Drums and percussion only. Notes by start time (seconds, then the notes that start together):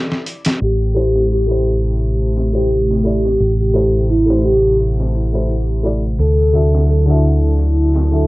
0.12 snare
0.26 closed hi-hat
0.45 snare, closed hi-hat
0.61 closed hi-hat
0.96 closed hi-hat
1.16 snare
1.30 closed hi-hat
1.66 closed hi-hat
2.01 closed hi-hat
2.36 snare, closed hi-hat
2.55 closed hi-hat
2.70 closed hi-hat
2.91 snare
3.05 closed hi-hat
3.25 snare
3.40 closed hi-hat
3.75 closed hi-hat
4.10 closed hi-hat
4.30 snare
4.45 closed hi-hat
4.80 closed hi-hat
5.00 snare
5.15 closed hi-hat
5.33 closed hi-hat
5.50 closed hi-hat
5.84 closed hi-hat
6.19 closed hi-hat
6.54 closed hi-hat
6.75 snare
6.89 closed hi-hat
7.24 closed hi-hat
7.59 closed hi-hat
7.94 snare, closed hi-hat
8.13 closed hi-hat